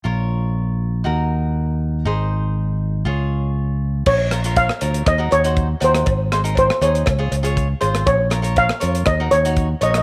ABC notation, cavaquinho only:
X:1
M:4/4
L:1/16
Q:1/4=120
K:Bbm
V:1 name="Cavaquinho"
[FBd]8 [EGB]8 | [EAc]8 [FAd]8 | z2 [FBd] [FBd]2 z [FBd]2 z [EGB] z [EGc]2 z [EGB]2 | z2 [EAc] [EAB]2 z [EAc]2 z [FAd] z [FAd]2 z [FAc]2 |
z2 [FBd] [FBd]2 z [FBd]2 z [EGB] z [EGd]2 z [EGd]2 |]